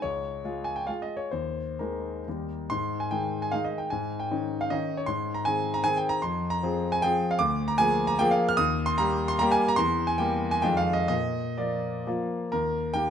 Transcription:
0.02 0.43 C#2 medium
0.02 0.66 C#5 medium
0.45 0.84 G#3 medium
0.45 0.85 F4 medium
0.64 0.76 G#5 medium
0.76 0.88 G5 medium
0.87 1.28 G#3 soft
0.87 1.29 F4 soft
0.87 1.02 F5 medium
1.02 1.17 D#5 medium
1.17 1.32 C#5 medium
1.31 1.78 D#2 medium
1.31 1.79 C5 medium
1.79 2.23 D#3 soft
1.79 2.23 G#3 medium
1.79 2.23 D#4 soft
1.79 2.49 A#4 medium
2.28 2.69 D#2 soft
2.28 2.67 D#3 soft
2.28 2.67 G3 soft
2.28 2.67 D#4 soft
2.70 3.11 G#2 medium
2.70 3.00 C6 loud
3.00 3.11 G#5 medium
3.11 3.49 D#3 medium
3.11 3.49 G#3 soft
3.11 3.49 D#4 medium
3.11 3.42 G5 medium
3.42 3.52 G#5 medium
3.52 3.88 D#3 medium
3.52 3.88 G#3 medium
3.52 3.88 D#4 medium
3.52 3.65 F5 medium
3.64 3.78 D#5 medium
3.78 3.91 G5 medium
3.90 4.31 G#2 medium
3.90 4.21 G#5 medium
4.20 4.61 G5 medium
4.31 4.67 D#3 soft
4.31 4.67 C#4 medium
4.31 4.67 D#4 medium
4.61 4.71 F5 medium
4.70 5.05 D#3 medium
4.70 5.06 C#4 medium
4.70 5.06 D#4 medium
4.70 4.99 D#5 medium
4.97 5.08 C#5 medium
5.06 5.45 G#2 medium
5.06 5.36 C6 medium
5.34 5.46 A#5 medium
5.45 5.81 D#3 medium
5.45 5.81 C4 medium
5.45 5.81 G#4 medium
5.45 5.75 G#5 loud
5.74 5.84 A#5 loud
5.84 6.19 D#3 medium
5.84 6.19 C4 medium
5.84 6.19 G#4 medium
5.84 5.97 G#5 loud
5.97 6.10 G5 medium
6.09 6.22 A#5 loud
6.22 6.62 F2 medium
6.22 6.52 C6 medium
6.50 6.93 A#5 loud
6.63 7.00 F3 medium
6.63 7.00 C4 medium
6.63 7.00 G#4 medium
6.92 7.03 G#5 loud
7.02 7.37 F3 medium
7.02 7.37 C4 medium
7.02 7.38 G#4 medium
7.02 7.31 G5 loud
7.31 7.41 F5 medium
7.39 7.78 D2 medium
7.39 7.68 D6 loud
7.68 7.79 A#5 loud
7.78 8.15 F3 medium
7.78 8.15 A#3 medium
7.78 8.16 G#4 medium
7.78 8.09 G#5 loud
8.07 8.18 A#5 loud
8.19 8.55 F3 medium
8.19 8.55 A#3 medium
8.19 8.55 G#4 medium
8.19 8.32 G5 loud
8.31 8.48 F5 loud
8.49 8.58 F6 loud
8.57 8.97 D#2 medium
8.57 8.87 D#6 loud
8.86 8.97 C6 loud
8.98 9.36 G3 medium
8.98 9.36 A#3 medium
8.98 9.37 G4 medium
8.98 9.30 A#5 loud
9.28 9.39 C6 loud
9.39 9.75 G3 medium
9.39 9.76 A#3 medium
9.39 9.76 G4 medium
9.39 9.53 A#5 loud
9.51 9.69 G#5 loud
9.68 9.78 A#5 loud
9.76 10.18 E2 medium
9.76 10.07 C6 loud
10.07 10.19 G#5 loud
10.18 10.60 G3 medium
10.18 10.60 A#3 medium
10.18 10.60 G4 medium
10.18 10.52 G5 loud
10.51 10.63 G#5 loud
10.62 11.09 F2 medium
10.62 11.06 D#3 medium
10.62 11.06 G#3 medium
10.62 11.07 F4 medium
10.62 10.78 G5 loud
10.77 10.94 F5 loud
10.93 11.07 D#5 loud
11.08 11.57 A#2 medium
11.08 11.58 D#5 loud
11.58 12.03 F3 medium
11.58 12.03 A#3 medium
11.58 12.03 F4 medium
11.58 12.06 D5 medium
12.07 12.48 F3 medium
12.07 12.49 A#3 medium
12.07 12.49 F4 medium
12.52 12.94 D#2 medium
12.52 12.95 A#4 loud
12.94 13.10 D#3 medium
12.94 13.10 A#3 medium
12.94 13.10 G4 medium
12.94 13.10 G5 loud

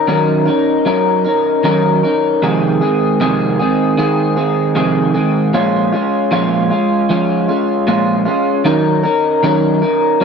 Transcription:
0.08 0.47 D#3 medium
0.08 0.47 F#3 medium
0.08 0.47 C#4 medium
0.08 0.46 D#4 medium
0.08 0.45 A#4 medium
0.46 0.85 C#4 soft
0.46 0.85 D#4 medium
0.46 0.86 A#4 medium
0.85 1.25 F#3 medium
0.85 1.25 C#4 medium
0.85 1.24 D#4 medium
0.85 1.23 A#4 medium
1.24 1.63 C#4 soft
1.24 1.64 D#4 soft
1.24 1.64 A#4 soft
1.63 2.03 D#3 medium
1.63 2.03 F#3 medium
1.63 2.03 C#4 medium
1.63 2.03 D#4 medium
1.63 2.02 A#4 medium
2.03 2.43 C#4 soft
2.03 2.43 D#4 soft
2.03 2.42 A#4 soft
2.42 2.81 F2 medium
2.42 2.81 C3 medium
2.42 2.81 D#3 medium
2.42 2.82 G#3 medium
2.42 2.81 C4 medium
2.42 2.80 G#4 medium
2.81 3.20 D#3 soft
2.81 3.20 G#3 soft
2.81 3.20 C4 medium
2.81 3.20 G#4 medium
3.20 3.59 F2 medium
3.20 3.59 C3 medium
3.20 3.59 D#3 medium
3.20 3.59 G#3 medium
3.20 3.59 C4 medium
3.20 3.58 G#4 medium
3.59 3.96 D#3 soft
3.59 3.97 G#3 soft
3.59 3.98 C4 medium
3.59 3.98 G#4 medium
3.97 4.37 D#3 medium
3.97 4.36 G#3 medium
3.97 4.36 C4 medium
3.97 4.35 G#4 medium
4.36 4.74 D#3 soft
4.36 4.75 G#3 soft
4.36 4.75 C4 soft
4.36 4.75 G#4 medium
4.75 5.14 F2 medium
4.75 5.15 C3 medium
4.75 5.15 D#3 medium
4.75 5.14 G#3 medium
4.75 5.14 C4 medium
4.75 5.13 G#4 medium
5.14 5.53 D#3 soft
5.14 5.53 G#3 soft
5.14 5.54 C4 medium
5.14 5.53 G#4 medium
5.53 5.93 A#2 medium
5.53 5.93 F3 medium
5.53 5.93 G#3 medium
5.53 5.92 C#4 medium
5.53 5.91 F4 medium
5.92 6.31 G#3 soft
5.92 6.31 C#4 soft
5.92 6.32 F4 medium
6.31 6.70 A#2 medium
6.31 6.71 F3 medium
6.31 6.71 G#3 medium
6.31 6.70 C#4 medium
6.31 6.69 F4 medium
6.70 7.09 G#3 soft
6.70 7.09 C#4 soft
6.70 7.09 F4 medium
7.09 7.48 F3 medium
7.09 7.49 G#3 medium
7.09 7.48 C#4 medium
7.09 7.47 F4 medium
7.48 7.87 G#3 soft
7.48 7.87 C#4 soft
7.48 7.87 F4 soft
7.87 8.26 A#2 medium
7.87 8.27 F3 medium
7.87 8.26 G#3 medium
7.87 8.25 C#4 medium
7.87 8.24 F4 medium
8.25 8.65 G#3 soft
8.25 8.65 C#4 soft
8.25 8.65 F4 soft
8.65 9.04 D#3 medium
8.65 9.04 F#3 medium
8.65 9.05 C#4 medium
8.65 9.04 D#4 medium
8.65 9.02 A#4 medium
9.04 9.42 C#4 soft
9.04 9.43 D#4 soft
9.04 9.43 A#4 medium
9.43 9.82 D#3 medium
9.43 9.82 F#3 medium
9.43 9.82 C#4 loud
9.43 9.82 D#4 medium
9.43 9.81 A#4 medium
9.82 10.20 C#4 soft
9.82 10.20 D#4 medium
9.82 10.21 A#4 medium
10.20 10.24 F#3 medium
10.20 10.24 C#4 medium

